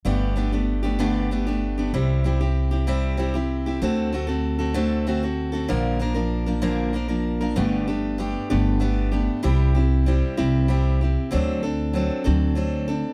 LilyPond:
<<
  \new Staff \with { instrumentName = "Steel-string acoustic guitar" } { \time 6/8 \key c \lydian \tempo 4. = 64 <g, d a b d' g'>8 <a b d' g'>16 <a b d' g'>8 <a b d' g'>16 <g, d a b d' g'>8 <a b d' g'>16 <a b d' g'>8 <a b d' g'>16 | <c g c' e' g'>8 <g c' e' g'>16 <c' e' g'>8 <c' e' g'>16 <c g c' e' g'>8 <g c' e' g'>16 <c' e' g'>8 <c' e' g'>16 | <d a c' fis' a'>8 <a c' fis' a'>16 <c' fis' a'>8 <c' fis' a'>16 <d a c' fis' a'>8 <a c' fis' a'>16 <c' fis' a'>8 <c' fis' a'>16 | <bes, d f bes d' bes'>8 <f bes d' bes'>16 <f bes d' bes'>8 <f bes d' bes'>16 <bes, d f bes d' bes'>8 <f bes d' bes'>16 <f bes d' bes'>8 <f bes d' bes'>16 |
<g, d a b d' g'>8 <a b d' g'>8 <a b d' g'>8 <g, d a b d' g'>8 <a b d' g'>8 <a b d' g'>8 | <c g c' e' g'>8 <c' e' g'>8 <g c' e' g'>8 <c g c' e' g'>8 <g c' e' g'>8 <c' e' g'>8 | <d fis c' d' a'>8 <c' d' a'>8 <fis c' d' a'>8 <d fis c' d' a'>8 <fis c' d' a'>8 <c' d' a'>8 | }
  \new Staff \with { instrumentName = "Upright bass" } { \clef bass \time 6/8 \key c \lydian g,,2. | c,2. | d,2. | bes,,2. |
g,,4. g,,4. | c,4. c,4. | d,4. d,4. | }
>>